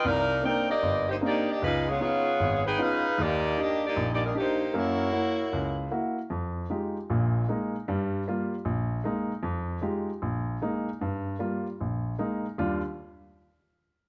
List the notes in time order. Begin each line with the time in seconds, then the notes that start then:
0.05 C2 C3 D#4 A#4 D5 F5
0.43 A#3 C4 D4 D#4 A#4 D5 G5
0.69 A#3 G4 D5 D#5
0.83 G1
1.09 A#3 D#4 G4 C5
1.21 A#3 C4 D4 D#4 G4
1.25 D#4 D5
1.50 A#3 D4 G4 D#5
1.62 C#2 G#3 D#4 F4 B4
1.88 B3 F4 G#4 C#5
2.00 B3 C#4 D#4 F4 G#4 C#5
2.40 G#1
2.66 D#4 G#4 B4 G5
2.78 B3 C#4 D#4 F4 G#4 B4 F5
3.18 D#2 A#3 D#4 G4 D5
3.57 A#3 D4 D#4 G4 D#5
3.85 A#3 D#4 G4 D5
3.96 A#1
4.13 A#3 D#4 G4 D5
4.25 G3 D4 D#4 A#4
4.35 A#3 D4 D#4 G4 C5
4.74 F#2 A#3 E4 F#4 C#5
5.13 A#3 E4 F#4
5.53 C#2
5.91 A#3 E4 F#4
6.30 F2
6.70 G#3 D#4 F4 G4
7.10 A#1 A#2
7.48 G#3 A#3 D#4
7.88 G2 G3
8.28 G3 A#3 F4
8.65 A#1
9.04 G#3 A#3 D#4
9.43 F2
9.82 G#3 D#4 F4 G4
10.22 A#1
10.62 G#3 A#3 D#4
11.01 G2
11.39 G3 A#3 F4
11.81 A#1
12.19 G#3 A#3 D#4
12.58 D#2 D#3 G3 D4 F4